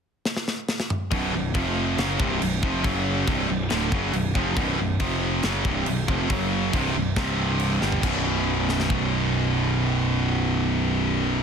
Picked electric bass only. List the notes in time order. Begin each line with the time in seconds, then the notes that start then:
1.11 B0
1.32 B0
1.55 F1
1.98 F#1
2.20 C1
2.41 B0
2.63 F1
2.85 F#1
3.28 C1
3.48 B0
3.71 D1
3.92 F#1
4.13 B0
4.35 F1
4.57 B0
4.78 B0
5.00 F1
5.44 F#1
5.65 C1
5.86 B0
6.08 F1
6.30 F#1
6.73 C1
6.96 B0
7.16 C1
7.82 G1
8.03 B0